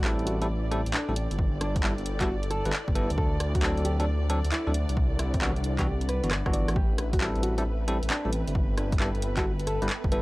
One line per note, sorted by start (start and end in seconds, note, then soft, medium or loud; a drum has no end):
0.00 0.16 A1 loud
0.00 3.91 E4 medium
0.00 0.11 F#4 medium
0.00 5.70 A4 medium
0.00 0.33 D5 medium
0.00 6.77 D5 medium
0.04 0.38 G3 medium
0.04 0.38 C4 medium
0.04 0.38 E4 medium
0.04 0.38 A4 loud
0.04 clap loud
0.19 0.48 A1 medium
0.19 3.18 G5 medium
0.19 closed hi-hat soft
0.27 0.41 F#4 medium
0.27 closed hi-hat loud
0.42 0.46 G3 medium
0.42 0.46 C4 medium
0.42 0.46 E4 medium
0.42 0.46 A4 medium
0.42 closed hi-hat medium
0.49 0.83 A1 medium
0.72 0.81 G3 medium
0.72 0.81 C4 medium
0.72 0.81 E4 medium
0.72 0.81 A4 loud
0.72 cross-stick soft
0.72 closed hi-hat loud
0.86 0.93 A1 medium
0.86 closed hi-hat medium
0.94 1.12 D4 medium
0.94 clap loud
0.94 closed hi-hat medium
1.09 1.27 A1 medium
1.09 1.13 G3 medium
1.09 1.13 C4 medium
1.09 1.13 E4 medium
1.09 1.13 A4 medium
1.16 closed hi-hat loud
1.31 1.60 G1 loud
1.31 closed hi-hat medium
1.39 kick loud
1.61 1.95 G1 loud
1.61 1.75 D4 medium
1.61 cross-stick medium
1.61 closed hi-hat loud
1.76 kick loud
1.76 closed hi-hat medium
1.83 1.92 G3 medium
1.83 1.92 B3 medium
1.83 1.92 E4 medium
1.83 1.92 A4 loud
1.83 clap loud
1.98 2.27 G1 medium
1.98 closed hi-hat soft
2.06 closed hi-hat loud
2.21 2.28 G3 medium
2.21 2.28 B3 medium
2.21 2.28 E4 medium
2.21 2.35 F#4 loud
2.21 2.28 A4 loud
2.21 kick medium
2.21 clap medium
2.21 closed hi-hat medium
2.28 2.63 G1 medium
2.43 closed hi-hat medium
2.51 2.72 A4 loud
2.51 cross-stick soft
2.51 closed hi-hat loud
2.65 2.72 G1 medium
2.65 2.70 G3 medium
2.65 2.70 B3 medium
2.65 2.70 E4 medium
2.65 2.70 B4 loud
2.65 closed hi-hat medium
2.73 clap loud
2.73 closed hi-hat medium
2.88 3.07 G1 medium
2.88 kick loud
2.95 3.10 G3 medium
2.95 3.10 B3 medium
2.95 3.10 E4 medium
2.95 3.10 A4 loud
2.95 3.10 B4 medium
2.95 closed hi-hat loud
3.10 3.39 D2 loud
3.10 closed hi-hat medium
3.17 7.43 D4 medium
3.17 3.36 A4 loud
3.17 kick loud
3.32 4.97 C5 medium
3.32 6.76 F#5 medium
3.40 3.74 D2 loud
3.40 cross-stick medium
3.40 closed hi-hat loud
3.55 3.69 F#4 medium
3.55 kick loud
3.55 closed hi-hat medium
3.63 3.96 F#3 medium
3.63 3.96 C4 medium
3.63 3.96 D4 medium
3.63 3.96 A4 loud
3.63 clap loud
3.77 4.06 D2 medium
3.77 closed hi-hat soft
3.85 3.99 G4 medium
3.85 closed hi-hat loud
4.00 4.04 F#3 medium
4.00 4.04 C4 medium
4.00 4.04 D4 medium
4.00 4.04 A4 loud
4.00 closed hi-hat medium
4.07 4.42 D2 medium
4.30 4.39 F#3 medium
4.30 4.39 C4 medium
4.30 4.39 D4 medium
4.30 4.39 A4 loud
4.30 cross-stick soft
4.30 closed hi-hat loud
4.44 4.51 D2 medium
4.44 closed hi-hat medium
4.52 4.70 E4 loud
4.52 clap loud
4.52 closed hi-hat medium
4.67 4.86 D2 medium
4.67 4.72 F#3 medium
4.67 4.72 C4 medium
4.67 4.72 D4 medium
4.67 4.72 A4 medium
4.74 closed hi-hat loud
4.89 5.18 C2 loud
4.89 closed hi-hat medium
4.97 kick loud
5.19 5.54 C2 loud
5.19 5.33 E4 medium
5.19 7.49 B4 medium
5.19 cross-stick medium
5.19 closed hi-hat loud
5.34 10.22 E5 medium
5.34 kick loud
5.34 closed hi-hat medium
5.42 5.51 E3 medium
5.42 5.51 B3 medium
5.42 5.51 D4 medium
5.42 5.51 F#4 loud
5.42 clap loud
5.56 5.85 C2 medium
5.56 closed hi-hat soft
5.64 closed hi-hat loud
5.79 5.86 E3 medium
5.79 5.86 B3 medium
5.79 5.86 D4 medium
5.79 5.86 F#4 loud
5.79 5.93 G4 medium
5.79 kick medium
5.79 clap medium
5.79 closed hi-hat medium
5.86 6.21 C2 medium
6.01 closed hi-hat medium
6.09 6.31 B4 medium
6.09 cross-stick soft
6.09 closed hi-hat loud
6.24 6.42 G1 medium
6.24 6.28 E3 medium
6.24 6.28 B3 medium
6.24 6.28 D4 medium
6.24 6.28 F#4 medium
6.24 closed hi-hat medium
6.31 cross-stick medium
6.31 clap loud
6.31 closed hi-hat medium
6.46 6.65 G1 loud
6.46 6.75 E3 medium
6.46 6.75 B3 medium
6.46 6.75 D4 medium
6.46 6.75 F#4 loud
6.46 kick loud
6.46 cross-stick medium
6.53 6.68 D5 medium
6.53 closed hi-hat loud
6.68 6.97 A1 medium
6.68 cross-stick medium
6.68 closed hi-hat medium
6.76 8.55 C4 medium
6.76 6.94 G4 loud
6.76 10.22 B4 medium
6.76 kick loud
6.92 10.22 A4 medium
6.98 7.33 A1 loud
6.98 cross-stick medium
6.98 closed hi-hat loud
7.13 7.27 F#4 medium
7.13 10.22 G5 medium
7.13 kick loud
7.13 closed hi-hat medium
7.21 7.54 G3 medium
7.21 7.54 C4 medium
7.21 7.54 E4 medium
7.21 7.54 A4 loud
7.21 clap loud
7.36 7.64 A1 medium
7.36 closed hi-hat soft
7.43 7.57 F#4 medium
7.43 closed hi-hat loud
7.58 7.63 G3 medium
7.58 7.63 C4 medium
7.58 7.63 E4 medium
7.58 7.63 A4 loud
7.58 closed hi-hat medium
7.66 8.00 A1 medium
7.88 7.97 G3 medium
7.88 7.97 C4 medium
7.88 7.97 E4 medium
7.88 7.97 A4 loud
7.88 cross-stick soft
7.88 closed hi-hat loud
8.03 8.09 A1 medium
8.03 closed hi-hat medium
8.10 8.28 D4 loud
8.10 clap loud
8.10 closed hi-hat medium
8.25 8.44 A1 medium
8.25 8.30 G3 medium
8.25 8.30 C4 medium
8.25 8.30 E4 medium
8.25 8.30 A4 medium
8.33 closed hi-hat loud
8.47 8.76 G1 loud
8.47 closed hi-hat medium
8.55 10.22 B3 medium
8.55 kick loud
8.77 9.12 G1 loud
8.77 8.92 D4 medium
8.77 cross-stick medium
8.77 closed hi-hat loud
8.92 kick loud
8.92 closed hi-hat medium
9.00 9.09 G3 medium
9.00 9.09 B3 medium
9.00 9.09 E4 medium
9.00 9.09 A4 loud
9.00 clap loud
9.15 9.43 G1 medium
9.15 closed hi-hat soft
9.22 closed hi-hat loud
9.37 9.44 G3 medium
9.37 9.44 B3 medium
9.37 9.44 E4 medium
9.37 9.51 F#4 medium
9.37 9.44 A4 loud
9.37 kick medium
9.37 clap medium
9.37 closed hi-hat medium
9.45 9.79 G1 medium
9.59 closed hi-hat medium
9.67 9.89 A4 loud
9.67 cross-stick soft
9.67 closed hi-hat loud
9.82 9.89 G1 medium
9.82 9.86 G3 medium
9.82 9.86 B3 medium
9.82 9.87 E4 medium
9.82 9.87 B4 loud
9.82 closed hi-hat medium
9.89 clap loud
9.89 closed hi-hat medium
10.04 10.22 G1 medium
10.04 kick loud
10.12 10.22 G3 medium
10.12 10.22 B3 medium
10.12 10.22 E4 medium
10.12 10.22 A4 loud
10.12 10.22 B4 medium
10.12 closed hi-hat loud